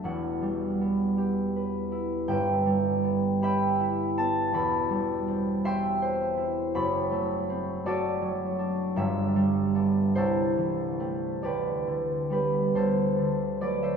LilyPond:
<<
  \new Staff \with { instrumentName = "Harp" } { \time 6/8 \key e \dorian \tempo 4. = 53 << { <e'' fis''>2. | g''4. b''4 a''8 | \key g \major b''4. c'''4. | b''4. d''4. |
e''4. c''4. | d''4 b'8 c''4 d''16 e''16 | } \\ { r2. | <b' e''>4. <e'' g''>4.~ | <e'' g''>4. <e'' g''>4. | r4. <fis' a'>4. |
r4. <e' a'>4. | <g' b'>4 g'8 a'4 b'16 c''16 | } >> }
  \new Staff \with { instrumentName = "Harp" } { \clef bass \time 6/8 \key e \dorian <e,, e,>8 g8 b8 g'8 b'8 e'8 | <g,, g,>8 g8 b8 g'8 e'8 b8 | \key g \major <e,, e,>8 g8 c'8 g'8 c''8 e'8 | <fis,, fis,>8 a8 c'8 a8 fis8 d'8 |
<g,, g,>8 g8 <b d'>8 c,8 e8 <a c'>8 | d,8 d8 <g b>8 d,8 d8 <fis a>8 | }
>>